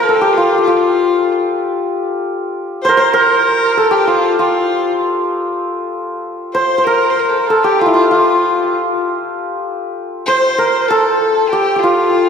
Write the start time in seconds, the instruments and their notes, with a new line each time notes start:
Already playing: santur F4 A#4 C5
0.03 violin A4
0.09 santur A4
0.16 violin G4
0.21 santur G4
0.32 violin F4
0.37 santur F4
0.58 santur G4
0.63 violin F4
0.67 santur F4, violin G4
0.77 violin F4
2.82 violin C5, santur C5
2.89 santur A#4
2.97 violin C5, santur C5
3.13 santur A#4, violin A#4
3.77 santur A4
3.91 santur G4, violin G4
4.07 santur F4, violin F4
4.39 violin F4, santur F4
6.54 violin C5, santur C5
6.78 santur C5
6.84 violin A#4, santur A#4
7.10 violin C5
7.19 violin A#4
7.29 violin A4
7.39 violin A#4
7.47 violin A4, santur A4
7.63 violin G4, santur G4
7.79 violin F4, santur F4
7.86 santur E4
7.93 violin F4, santur F4
8.11 violin F4, santur F4
10.26 violin C5, santur C5
10.58 santur A#4
10.88 violin A4, santur A4
11.49 violin G4, santur G4
11.76 violin F4, santur G4
11.83 santur F4